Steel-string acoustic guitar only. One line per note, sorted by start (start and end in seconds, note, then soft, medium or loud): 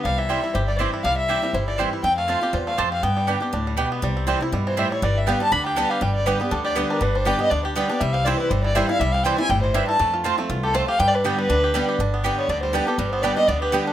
0.05 0.52 C3 medium
0.30 0.53 E3 medium
0.30 0.54 G3 medium
0.30 0.54 C4 medium
0.30 0.54 E4 medium
0.55 1.02 G2 medium
0.79 1.03 E3 medium
0.79 1.03 G3 medium
0.79 1.04 C4 medium
0.79 1.04 E4 medium
1.05 1.52 C3 medium
1.29 1.42 E3 medium
1.29 1.42 G3 medium
1.29 1.43 C4 medium
1.29 1.41 E4 medium
1.42 1.54 C4 medium
1.42 1.53 E4 medium
1.54 2.02 G2 medium
1.79 2.02 E3 medium
1.79 2.03 G3 medium
1.79 2.03 C4 medium
1.79 2.04 E4 medium
2.04 2.51 F2 medium
2.28 2.41 F3 medium
2.28 2.41 A3 medium
2.28 2.42 C4 medium
2.28 2.40 F4 medium
2.41 2.54 C4 soft
2.41 2.53 F4 medium
2.53 2.77 E2 medium
2.78 3.02 F2 medium
3.03 3.51 G2 medium
3.27 3.41 D3 medium
3.27 3.41 G3 medium
3.27 3.41 B3 medium
3.27 3.39 G4 medium
3.40 3.53 B3 soft
3.40 3.52 G4 medium
3.53 3.77 A2 medium
3.77 4.01 B2 medium
4.02 4.50 C3 medium
4.27 4.40 E3 medium
4.27 4.40 G3 medium
4.27 4.41 C4 medium
4.27 4.39 E4 medium
4.41 4.53 C4 soft
4.41 4.52 E4 medium
4.52 4.76 B2 medium
4.77 5.01 A2 medium
5.02 5.50 G2 medium
5.27 5.40 D3 medium
5.27 5.40 G3 medium
5.27 5.41 B3 medium
5.27 5.39 G4 loud
5.40 5.52 B3 soft
5.40 5.51 G4 medium
5.52 5.75 D3 medium
5.76 6.00 D3 medium
5.76 6.01 G3 loud
5.76 6.01 B3 loud
5.76 6.01 G4 loud
6.01 6.49 G2 medium
6.26 6.39 D3 medium
6.26 6.40 G3 medium
6.26 6.40 B3 loud
6.26 6.38 G4 medium
6.40 6.52 B3 soft
6.40 6.51 G4 medium
6.51 6.74 D3 medium
6.76 7.00 D3 medium
6.76 7.00 G3 loud
6.76 7.00 B3 medium
6.76 7.01 G4 loud
7.01 7.49 G2 medium
7.25 7.39 D3 medium
7.25 7.39 G3 medium
7.25 7.39 B3 medium
7.25 7.38 G4 loud
7.39 7.51 B3 soft
7.39 7.50 G4 medium
7.51 7.74 D3 medium
7.76 7.89 D3 medium
7.76 7.89 G3 loud
7.76 7.89 B3 medium
7.76 7.88 G4 loud
7.89 8.01 B3 medium
7.89 8.00 G4 medium
8.01 8.48 C3 medium
8.25 8.49 E3 medium
8.25 8.50 G3 medium
8.25 8.50 C4 medium
8.25 8.50 E4 loud
8.51 8.98 G2 medium
8.75 8.88 E3 loud
8.75 8.89 G3 loud
8.75 8.89 C4 loud
8.75 8.88 E4 loud
8.89 9.01 C4 medium
8.89 9.00 E4 medium
9.01 9.48 C3 medium
9.24 9.38 E3 medium
9.24 9.38 G3 loud
9.24 9.39 C4 medium
9.24 9.37 E4 loud
9.38 9.51 C4 medium
9.38 9.50 E4 medium
9.50 9.74 A2 medium
9.74 9.99 G2 loud
9.99 10.47 F2 medium
10.24 10.38 F3 medium
10.24 10.38 A3 medium
10.24 10.38 C4 medium
10.24 10.36 F4 loud
10.38 10.50 C4 soft
10.38 10.49 F4 medium
10.50 10.73 E2 medium
10.75 10.98 F2 loud
11.00 11.47 G2 medium
11.24 11.48 D3 medium
11.24 11.49 G3 medium
11.24 11.49 B3 medium
11.24 11.49 G4 medium
11.50 11.73 D3 medium
11.74 11.98 D3 loud
11.74 11.98 G3 medium
11.74 11.99 B3 medium
11.74 11.99 G4 medium
12.00 12.47 G2 medium
12.24 12.48 D3 medium
12.24 12.48 G3 loud
12.24 12.49 B3 medium
12.24 12.49 G4 loud
12.49 12.72 D3 medium
12.73 12.86 D3 medium
12.73 12.87 G3 medium
12.73 12.87 B3 medium
12.73 12.85 G4 loud
12.87 12.99 B3 soft
12.87 12.98 G4 medium
12.99 13.46 G2 medium
13.23 13.36 D3 medium
13.23 13.37 G3 medium
13.23 13.37 B3 medium
13.23 13.35 G4 medium
13.36 13.49 B3 soft
13.36 13.48 G4 medium
13.48 13.71 D3 medium
13.72 13.93 D3 loud
13.72 13.93 G3 medium
13.72 13.93 B3 medium
13.72 13.93 G4 loud